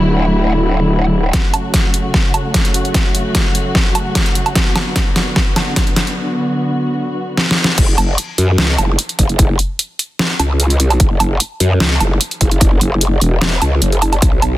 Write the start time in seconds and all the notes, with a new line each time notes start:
Already playing: D1 D3 F#3 A3 E4
1.33 C#3 F#3 A3 F#4, kick, snare, closed hi-hat
1.54 closed hi-hat, low woodblock
1.74 kick, snare, closed hi-hat
1.94 closed hi-hat
2.14 kick, snare
2.34 closed hi-hat, low woodblock
2.54 kick, snare, closed hi-hat
2.65 closed hi-hat
2.74 closed hi-hat
2.85 closed hi-hat
2.94 kick, snare, closed hi-hat
3.15 closed hi-hat
3.35 kick, snare, closed hi-hat
3.55 closed hi-hat
3.75 kick, snare
3.95 closed hi-hat, low woodblock
4.15 kick, snare, closed hi-hat
4.26 closed hi-hat
4.35 closed hi-hat
4.46 closed hi-hat, low woodblock
4.55 D3 B3, kick, snare, closed hi-hat
4.76 snare, closed hi-hat, low woodblock
4.96 kick, snare, closed hi-hat
5.16 snare, closed hi-hat
5.36 kick, snare
5.56 snare, closed hi-hat, low woodblock
5.76 kick, snare, closed hi-hat
5.87 closed hi-hat
5.96 snare, closed hi-hat
6.07 closed hi-hat
7.37 snare
7.51 snare
7.64 snare
7.78 F#1, kick, closed hi-hat, crash
7.98 F#1, closed hi-hat, low woodblock
8.18 closed hi-hat
8.38 F#2, closed hi-hat
8.58 C#2, snare
8.78 F#1, closed hi-hat, low woodblock
8.99 closed hi-hat
9.09 closed hi-hat
9.19 F#1, kick, closed hi-hat
9.29 closed hi-hat
9.39 kick, closed hi-hat
9.59 closed hi-hat
9.79 closed hi-hat
9.99 closed hi-hat
10.19 snare
10.39 C#2, closed hi-hat, low woodblock
10.60 closed hi-hat
10.70 closed hi-hat
10.80 C2, closed hi-hat
10.90 closed hi-hat, low woodblock
11.00 F#1, kick, closed hi-hat
11.20 F#1, closed hi-hat, low woodblock
11.40 closed hi-hat
11.60 F#2, closed hi-hat
11.80 C#2, snare
12.00 F#1, closed hi-hat, low woodblock
12.21 closed hi-hat
12.31 closed hi-hat
12.41 F#1, kick, closed hi-hat
12.51 closed hi-hat
12.61 kick, closed hi-hat
12.81 F#1, closed hi-hat
13.01 closed hi-hat
13.21 E1, closed hi-hat
13.41 snare
13.62 C#2, closed hi-hat, low woodblock
13.82 F#1, closed hi-hat
13.92 closed hi-hat
14.02 closed hi-hat, low woodblock
14.13 closed hi-hat, low woodblock
14.22 B1, kick, closed hi-hat
14.42 B1, closed hi-hat, low woodblock